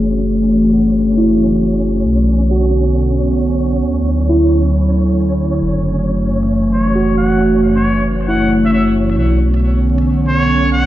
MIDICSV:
0, 0, Header, 1, 7, 480
1, 0, Start_track
1, 0, Key_signature, 3, "minor"
1, 0, Tempo, 444444
1, 310, Time_signature, 4, 2, 24, 8
1, 11729, End_track
2, 0, Start_track
2, 0, Title_t, "Muted trumpet"
2, 0, Program_c, 0, 59
2, 7275, Note_on_c, 0, 73, 79
2, 7734, Note_off_c, 0, 73, 0
2, 7749, Note_on_c, 0, 78, 82
2, 8005, Note_off_c, 0, 78, 0
2, 8382, Note_on_c, 0, 73, 84
2, 8710, Note_off_c, 0, 73, 0
2, 8949, Note_on_c, 0, 78, 83
2, 9204, Note_off_c, 0, 78, 0
2, 9346, Note_on_c, 0, 76, 75
2, 9400, Note_off_c, 0, 76, 0
2, 9432, Note_on_c, 0, 76, 69
2, 9528, Note_off_c, 0, 76, 0
2, 11103, Note_on_c, 0, 73, 85
2, 11569, Note_off_c, 0, 73, 0
2, 11582, Note_on_c, 0, 78, 85
2, 11729, Note_off_c, 0, 78, 0
2, 11729, End_track
3, 0, Start_track
3, 0, Title_t, "Synth texture"
3, 0, Program_c, 1, 99
3, 0, Note_on_c, 1, 61, 78
3, 0, Note_on_c, 1, 73, 75
3, 11729, Note_off_c, 1, 61, 0
3, 11729, Note_off_c, 1, 73, 0
3, 11729, End_track
4, 0, Start_track
4, 0, Title_t, "Synth keys"
4, 0, Program_c, 2, 88
4, 0, Control_c, 2, 64, 127
4, 0, Note_on_c, 2, 68, 53
4, 787, Note_on_c, 2, 66, 45
4, 1269, Note_on_c, 2, 64, 56
4, 1916, Note_off_c, 2, 66, 0
4, 2241, Control_c, 2, 64, 0
4, 2247, Note_off_c, 2, 68, 0
4, 2397, Note_off_c, 2, 64, 0
4, 2438, Control_c, 2, 64, 127
4, 2707, Note_on_c, 2, 66, 63
4, 3836, Note_off_c, 2, 66, 0
4, 4165, Control_c, 2, 64, 0
4, 4329, Control_c, 2, 64, 127
4, 4634, Note_on_c, 2, 64, 64
4, 5759, Note_off_c, 2, 64, 0
4, 6086, Control_c, 2, 64, 0
4, 6290, Control_c, 2, 64, 127
4, 7508, Note_on_c, 2, 66, 61
4, 8637, Note_off_c, 2, 66, 0
4, 8945, Note_on_c, 2, 64, 65
4, 9922, Control_c, 2, 64, 0
4, 10075, Note_off_c, 2, 64, 0
4, 11729, End_track
5, 0, Start_track
5, 0, Title_t, "Ambient pad"
5, 0, Program_c, 3, 92
5, 0, Note_on_c, 3, 52, 73
5, 0, Note_on_c, 3, 57, 69
5, 0, Note_on_c, 3, 66, 82
5, 2191, Note_off_c, 3, 52, 0
5, 2191, Note_off_c, 3, 57, 0
5, 2192, Note_off_c, 3, 66, 0
5, 2227, Note_on_c, 3, 50, 83
5, 2227, Note_on_c, 3, 61, 77
5, 2229, Note_on_c, 3, 59, 68
5, 4129, Note_off_c, 3, 50, 0
5, 4129, Note_off_c, 3, 61, 0
5, 4130, Note_off_c, 3, 59, 0
5, 4151, Note_on_c, 3, 54, 70
5, 4152, Note_on_c, 3, 50, 77
5, 4155, Note_on_c, 3, 64, 85
5, 6051, Note_off_c, 3, 54, 0
5, 6052, Note_off_c, 3, 50, 0
5, 6053, Note_off_c, 3, 64, 0
5, 6076, Note_on_c, 3, 66, 85
5, 6077, Note_on_c, 3, 57, 69
5, 6080, Note_on_c, 3, 52, 76
5, 9874, Note_off_c, 3, 66, 0
5, 9875, Note_off_c, 3, 57, 0
5, 9876, Note_off_c, 3, 52, 0
5, 9907, Note_on_c, 3, 61, 76
5, 9910, Note_on_c, 3, 50, 81
5, 9910, Note_on_c, 3, 59, 69
5, 11729, Note_off_c, 3, 50, 0
5, 11729, Note_off_c, 3, 59, 0
5, 11729, Note_off_c, 3, 61, 0
5, 11729, End_track
6, 0, Start_track
6, 0, Title_t, "Detuned saw bass"
6, 0, Program_c, 4, 39
6, 0, Note_on_c, 4, 30, 77
6, 2209, Note_off_c, 4, 30, 0
6, 2223, Note_on_c, 4, 35, 81
6, 4128, Note_off_c, 4, 35, 0
6, 4149, Note_on_c, 4, 38, 84
6, 6052, Note_off_c, 4, 38, 0
6, 6069, Note_on_c, 4, 30, 83
6, 9892, Note_off_c, 4, 30, 0
6, 9908, Note_on_c, 4, 35, 82
6, 11729, Note_off_c, 4, 35, 0
6, 11729, End_track
7, 0, Start_track
7, 0, Title_t, "Drums"
7, 221, Note_on_c, 9, 42, 51
7, 329, Note_off_c, 9, 42, 0
7, 703, Note_on_c, 9, 42, 52
7, 811, Note_off_c, 9, 42, 0
7, 1180, Note_on_c, 9, 42, 50
7, 1288, Note_off_c, 9, 42, 0
7, 1662, Note_on_c, 9, 42, 49
7, 1770, Note_off_c, 9, 42, 0
7, 1901, Note_on_c, 9, 42, 40
7, 2009, Note_off_c, 9, 42, 0
7, 2140, Note_on_c, 9, 42, 51
7, 2248, Note_off_c, 9, 42, 0
7, 2621, Note_on_c, 9, 42, 50
7, 2729, Note_off_c, 9, 42, 0
7, 3099, Note_on_c, 9, 42, 47
7, 3207, Note_off_c, 9, 42, 0
7, 3580, Note_on_c, 9, 42, 50
7, 3688, Note_off_c, 9, 42, 0
7, 3821, Note_on_c, 9, 42, 38
7, 3929, Note_off_c, 9, 42, 0
7, 4061, Note_on_c, 9, 42, 51
7, 4169, Note_off_c, 9, 42, 0
7, 4548, Note_on_c, 9, 42, 50
7, 4656, Note_off_c, 9, 42, 0
7, 4785, Note_on_c, 9, 42, 27
7, 4893, Note_off_c, 9, 42, 0
7, 5026, Note_on_c, 9, 42, 49
7, 5134, Note_off_c, 9, 42, 0
7, 5507, Note_on_c, 9, 42, 50
7, 5615, Note_off_c, 9, 42, 0
7, 5747, Note_on_c, 9, 42, 38
7, 5855, Note_off_c, 9, 42, 0
7, 5988, Note_on_c, 9, 42, 49
7, 6096, Note_off_c, 9, 42, 0
7, 6467, Note_on_c, 9, 42, 48
7, 6575, Note_off_c, 9, 42, 0
7, 6944, Note_on_c, 9, 42, 46
7, 7052, Note_off_c, 9, 42, 0
7, 7424, Note_on_c, 9, 42, 46
7, 7532, Note_off_c, 9, 42, 0
7, 7665, Note_on_c, 9, 42, 37
7, 7773, Note_off_c, 9, 42, 0
7, 7902, Note_on_c, 9, 42, 47
7, 8010, Note_off_c, 9, 42, 0
7, 8383, Note_on_c, 9, 42, 47
7, 8491, Note_off_c, 9, 42, 0
7, 8864, Note_on_c, 9, 42, 47
7, 8972, Note_off_c, 9, 42, 0
7, 9345, Note_on_c, 9, 42, 47
7, 9453, Note_off_c, 9, 42, 0
7, 9585, Note_on_c, 9, 42, 37
7, 9693, Note_off_c, 9, 42, 0
7, 9823, Note_on_c, 9, 42, 48
7, 9931, Note_off_c, 9, 42, 0
7, 10302, Note_on_c, 9, 42, 48
7, 10410, Note_off_c, 9, 42, 0
7, 10781, Note_on_c, 9, 42, 48
7, 10889, Note_off_c, 9, 42, 0
7, 11262, Note_on_c, 9, 42, 50
7, 11370, Note_off_c, 9, 42, 0
7, 11501, Note_on_c, 9, 42, 39
7, 11609, Note_off_c, 9, 42, 0
7, 11729, End_track
0, 0, End_of_file